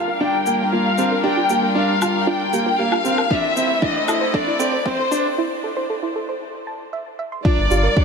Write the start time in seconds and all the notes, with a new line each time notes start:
Already playing: G1 G3 D4 F4 A#4 F5
0.08 A#4
0.20 D4 G5
0.34 G1
0.46 G1 A#3, shaker
0.72 A#3 F4 F5
0.98 G1 C4 G4, shaker
1.11 A#4
1.24 D4 G4 G5
1.37 G1 F4
1.50 G1 A#3 G4, shaker
1.63 A#4
1.75 D4 F5
2.02 G1 F4, low woodblock, shaker
2.27 D4 F4 G5
2.41 G1
2.53 G1 A#3 G4, shaker
2.66 A#4
2.79 A#3 G4 F5
2.92 F4, low woodblock
3.04 G1 C4 G4, shaker
3.18 A#4, low woodblock
3.30 A3 C4 D4 E4 E5, kick
3.43 A1
3.56 A1 C4, shaker
3.82 D4 E4 D#5, kick
4.08 A1 E4 A4, low woodblock, shaker
4.21 C5
4.34 D4 A4 D5, kick
4.47 A1 E4
4.59 A1 C4 A4, shaker
4.73 C5
4.85 C4 C5, kick
5.11 A1 D4, shaker
5.38 E4
5.64 A4
5.77 C5
5.90 A4
6.03 E4
6.16 A4
6.29 C5
6.67 A5
6.93 E5
7.19 E5
7.32 C6
7.45 G3 D4 F4 A#4 D5, kick
7.58 G1
7.71 G1 F4 G4, shaker
7.83 A#4
7.96 D4 G4, kick